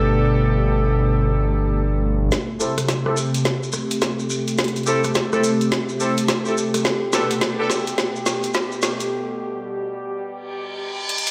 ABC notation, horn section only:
X:1
M:4/4
L:1/16
Q:"Swing 16ths" 1/4=106
K:Am
V:1 name="Horn section"
[B,DGA]16 | z2 [CEGA] z2 [CEGA] z8 z2 | z2 [CEGA] z2 [CEGA] z4 [CEGA] z2 [CEGA] z2 | z2 [B,DGA] z2 [B,DGA] z8 z2 |
z16 |]